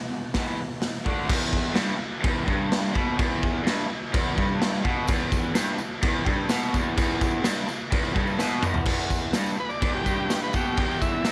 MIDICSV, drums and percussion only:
0, 0, Header, 1, 2, 480
1, 0, Start_track
1, 0, Tempo, 473934
1, 1319, Time_signature, 4, 2, 24, 8
1, 11464, End_track
2, 0, Start_track
2, 0, Title_t, "Drums"
2, 345, Note_on_c, 9, 38, 105
2, 349, Note_on_c, 9, 46, 57
2, 351, Note_on_c, 9, 36, 107
2, 446, Note_off_c, 9, 38, 0
2, 450, Note_off_c, 9, 46, 0
2, 452, Note_off_c, 9, 36, 0
2, 828, Note_on_c, 9, 38, 100
2, 832, Note_on_c, 9, 46, 51
2, 929, Note_off_c, 9, 38, 0
2, 933, Note_off_c, 9, 46, 0
2, 1073, Note_on_c, 9, 36, 100
2, 1174, Note_off_c, 9, 36, 0
2, 1311, Note_on_c, 9, 36, 123
2, 1313, Note_on_c, 9, 49, 124
2, 1313, Note_on_c, 9, 57, 65
2, 1413, Note_off_c, 9, 36, 0
2, 1415, Note_off_c, 9, 49, 0
2, 1415, Note_off_c, 9, 57, 0
2, 1548, Note_on_c, 9, 36, 88
2, 1649, Note_off_c, 9, 36, 0
2, 1778, Note_on_c, 9, 38, 125
2, 1782, Note_on_c, 9, 57, 68
2, 1879, Note_off_c, 9, 38, 0
2, 1883, Note_off_c, 9, 57, 0
2, 2269, Note_on_c, 9, 36, 121
2, 2270, Note_on_c, 9, 57, 68
2, 2370, Note_off_c, 9, 36, 0
2, 2371, Note_off_c, 9, 57, 0
2, 2510, Note_on_c, 9, 36, 80
2, 2611, Note_off_c, 9, 36, 0
2, 2754, Note_on_c, 9, 38, 118
2, 2758, Note_on_c, 9, 57, 69
2, 2855, Note_off_c, 9, 38, 0
2, 2860, Note_off_c, 9, 57, 0
2, 2992, Note_on_c, 9, 36, 88
2, 3093, Note_off_c, 9, 36, 0
2, 3232, Note_on_c, 9, 36, 123
2, 3232, Note_on_c, 9, 57, 75
2, 3333, Note_off_c, 9, 36, 0
2, 3333, Note_off_c, 9, 57, 0
2, 3475, Note_on_c, 9, 36, 81
2, 3576, Note_off_c, 9, 36, 0
2, 3716, Note_on_c, 9, 38, 124
2, 3720, Note_on_c, 9, 57, 68
2, 3817, Note_off_c, 9, 38, 0
2, 3821, Note_off_c, 9, 57, 0
2, 4194, Note_on_c, 9, 36, 126
2, 4196, Note_on_c, 9, 57, 73
2, 4295, Note_off_c, 9, 36, 0
2, 4297, Note_off_c, 9, 57, 0
2, 4434, Note_on_c, 9, 36, 82
2, 4536, Note_off_c, 9, 36, 0
2, 4677, Note_on_c, 9, 38, 119
2, 4681, Note_on_c, 9, 57, 60
2, 4778, Note_off_c, 9, 38, 0
2, 4782, Note_off_c, 9, 57, 0
2, 4912, Note_on_c, 9, 36, 83
2, 5013, Note_off_c, 9, 36, 0
2, 5139, Note_on_c, 9, 54, 89
2, 5151, Note_on_c, 9, 36, 121
2, 5155, Note_on_c, 9, 57, 66
2, 5241, Note_off_c, 9, 54, 0
2, 5252, Note_off_c, 9, 36, 0
2, 5256, Note_off_c, 9, 57, 0
2, 5264, Note_on_c, 9, 54, 31
2, 5366, Note_off_c, 9, 54, 0
2, 5388, Note_on_c, 9, 36, 91
2, 5390, Note_on_c, 9, 54, 84
2, 5490, Note_off_c, 9, 36, 0
2, 5492, Note_off_c, 9, 54, 0
2, 5511, Note_on_c, 9, 54, 30
2, 5612, Note_off_c, 9, 54, 0
2, 5623, Note_on_c, 9, 38, 116
2, 5623, Note_on_c, 9, 54, 106
2, 5627, Note_on_c, 9, 57, 70
2, 5724, Note_off_c, 9, 38, 0
2, 5725, Note_off_c, 9, 54, 0
2, 5728, Note_off_c, 9, 57, 0
2, 5857, Note_on_c, 9, 54, 79
2, 5958, Note_off_c, 9, 54, 0
2, 6095, Note_on_c, 9, 54, 31
2, 6102, Note_on_c, 9, 57, 69
2, 6106, Note_on_c, 9, 36, 122
2, 6196, Note_off_c, 9, 54, 0
2, 6203, Note_off_c, 9, 57, 0
2, 6207, Note_off_c, 9, 36, 0
2, 6345, Note_on_c, 9, 36, 88
2, 6446, Note_off_c, 9, 36, 0
2, 6574, Note_on_c, 9, 54, 98
2, 6579, Note_on_c, 9, 38, 116
2, 6583, Note_on_c, 9, 57, 62
2, 6676, Note_off_c, 9, 54, 0
2, 6680, Note_off_c, 9, 38, 0
2, 6684, Note_off_c, 9, 57, 0
2, 6825, Note_on_c, 9, 54, 79
2, 6828, Note_on_c, 9, 36, 81
2, 6926, Note_off_c, 9, 54, 0
2, 6929, Note_off_c, 9, 36, 0
2, 7063, Note_on_c, 9, 57, 69
2, 7066, Note_on_c, 9, 36, 117
2, 7066, Note_on_c, 9, 54, 78
2, 7165, Note_off_c, 9, 57, 0
2, 7167, Note_off_c, 9, 36, 0
2, 7168, Note_off_c, 9, 54, 0
2, 7306, Note_on_c, 9, 36, 91
2, 7306, Note_on_c, 9, 54, 82
2, 7407, Note_off_c, 9, 54, 0
2, 7408, Note_off_c, 9, 36, 0
2, 7540, Note_on_c, 9, 38, 120
2, 7544, Note_on_c, 9, 57, 76
2, 7547, Note_on_c, 9, 54, 99
2, 7641, Note_off_c, 9, 38, 0
2, 7645, Note_off_c, 9, 57, 0
2, 7648, Note_off_c, 9, 54, 0
2, 7783, Note_on_c, 9, 54, 79
2, 7884, Note_off_c, 9, 54, 0
2, 8022, Note_on_c, 9, 57, 72
2, 8024, Note_on_c, 9, 36, 124
2, 8123, Note_off_c, 9, 57, 0
2, 8125, Note_off_c, 9, 36, 0
2, 8147, Note_on_c, 9, 54, 29
2, 8249, Note_off_c, 9, 54, 0
2, 8262, Note_on_c, 9, 36, 85
2, 8264, Note_on_c, 9, 54, 28
2, 8364, Note_off_c, 9, 36, 0
2, 8365, Note_off_c, 9, 54, 0
2, 8377, Note_on_c, 9, 54, 27
2, 8478, Note_off_c, 9, 54, 0
2, 8496, Note_on_c, 9, 38, 70
2, 8506, Note_on_c, 9, 54, 103
2, 8598, Note_off_c, 9, 38, 0
2, 8607, Note_off_c, 9, 54, 0
2, 8625, Note_on_c, 9, 54, 29
2, 8726, Note_off_c, 9, 54, 0
2, 8736, Note_on_c, 9, 45, 99
2, 8746, Note_on_c, 9, 54, 83
2, 8837, Note_off_c, 9, 45, 0
2, 8848, Note_off_c, 9, 54, 0
2, 8852, Note_on_c, 9, 43, 94
2, 8954, Note_off_c, 9, 43, 0
2, 8968, Note_on_c, 9, 49, 126
2, 8968, Note_on_c, 9, 57, 59
2, 8977, Note_on_c, 9, 36, 116
2, 9069, Note_off_c, 9, 49, 0
2, 9069, Note_off_c, 9, 57, 0
2, 9078, Note_off_c, 9, 36, 0
2, 9117, Note_on_c, 9, 54, 31
2, 9218, Note_off_c, 9, 54, 0
2, 9219, Note_on_c, 9, 36, 80
2, 9224, Note_on_c, 9, 54, 79
2, 9320, Note_off_c, 9, 36, 0
2, 9325, Note_off_c, 9, 54, 0
2, 9451, Note_on_c, 9, 38, 120
2, 9455, Note_on_c, 9, 57, 61
2, 9456, Note_on_c, 9, 54, 95
2, 9553, Note_off_c, 9, 38, 0
2, 9557, Note_off_c, 9, 54, 0
2, 9557, Note_off_c, 9, 57, 0
2, 9582, Note_on_c, 9, 54, 83
2, 9683, Note_off_c, 9, 54, 0
2, 9710, Note_on_c, 9, 54, 29
2, 9811, Note_off_c, 9, 54, 0
2, 9828, Note_on_c, 9, 54, 30
2, 9929, Note_off_c, 9, 54, 0
2, 9946, Note_on_c, 9, 36, 122
2, 9946, Note_on_c, 9, 57, 68
2, 10047, Note_off_c, 9, 36, 0
2, 10048, Note_off_c, 9, 57, 0
2, 10189, Note_on_c, 9, 36, 74
2, 10193, Note_on_c, 9, 54, 80
2, 10290, Note_off_c, 9, 36, 0
2, 10295, Note_off_c, 9, 54, 0
2, 10433, Note_on_c, 9, 38, 102
2, 10433, Note_on_c, 9, 54, 102
2, 10437, Note_on_c, 9, 57, 60
2, 10534, Note_off_c, 9, 38, 0
2, 10534, Note_off_c, 9, 54, 0
2, 10538, Note_off_c, 9, 57, 0
2, 10665, Note_on_c, 9, 54, 77
2, 10675, Note_on_c, 9, 36, 87
2, 10767, Note_off_c, 9, 54, 0
2, 10776, Note_off_c, 9, 36, 0
2, 10806, Note_on_c, 9, 54, 27
2, 10908, Note_off_c, 9, 54, 0
2, 10908, Note_on_c, 9, 57, 64
2, 10914, Note_on_c, 9, 36, 109
2, 11010, Note_off_c, 9, 57, 0
2, 11016, Note_off_c, 9, 36, 0
2, 11050, Note_on_c, 9, 54, 29
2, 11152, Note_off_c, 9, 54, 0
2, 11158, Note_on_c, 9, 36, 86
2, 11159, Note_on_c, 9, 54, 84
2, 11259, Note_off_c, 9, 36, 0
2, 11260, Note_off_c, 9, 54, 0
2, 11391, Note_on_c, 9, 38, 111
2, 11395, Note_on_c, 9, 57, 67
2, 11396, Note_on_c, 9, 54, 91
2, 11464, Note_off_c, 9, 38, 0
2, 11464, Note_off_c, 9, 54, 0
2, 11464, Note_off_c, 9, 57, 0
2, 11464, End_track
0, 0, End_of_file